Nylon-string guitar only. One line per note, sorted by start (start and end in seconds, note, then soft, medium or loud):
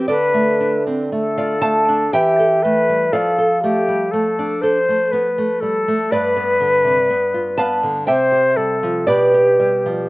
0.08 2.09 D3 medium
0.08 1.33 A4 medium
0.08 1.33 D5 medium
0.34 0.75 A3 soft
0.61 1.02 D4 soft
0.87 1.12 C4 soft
1.12 1.53 A3 soft
1.38 1.78 F4 soft
1.38 1.61 D5 medium
1.38 1.61 F5 medium
1.62 2.03 A3 soft
1.62 2.10 F5 medium
1.62 2.10 A5 loud
1.89 2.13 D4 soft
2.13 3.10 E3 medium
2.13 3.09 E5 medium
2.13 3.09 G5 loud
2.39 2.79 A4 soft
2.65 3.04 A3 soft
2.89 3.13 G3 soft
3.13 6.06 F3 medium
3.13 6.06 D5 medium
3.13 6.06 F5 loud
3.38 3.77 A4 medium
3.64 4.03 A3 soft
3.88 4.13 G3 soft
4.13 4.53 A3 soft
4.39 4.78 D4 soft
4.63 5.02 A4 medium
4.89 5.27 A3 soft
5.13 5.37 B3 soft
5.38 5.76 A3 soft
5.62 5.86 G3 soft
5.88 6.11 A3 medium
6.12 8.03 G2 medium
6.12 7.54 B4 medium
6.12 7.53 D5 medium
6.36 6.74 B3 medium
6.60 6.98 D3 medium
6.84 7.08 C3 soft
7.10 7.47 B3 medium
7.34 7.58 F4 soft
7.58 7.97 B3 medium
7.58 8.03 F5 medium
7.58 8.04 A5 loud
7.83 8.07 D3 medium
8.07 9.05 C3 medium
8.07 9.04 E5 medium
8.07 9.03 G5 medium
8.32 8.57 G4 soft
8.57 8.97 G3 soft
8.83 9.07 F3 medium
9.07 10.09 B2 medium
9.07 10.09 B4 medium
9.07 10.09 D5 medium
9.34 9.59 G4 medium
9.60 10.00 G3 medium
9.86 10.09 F3 soft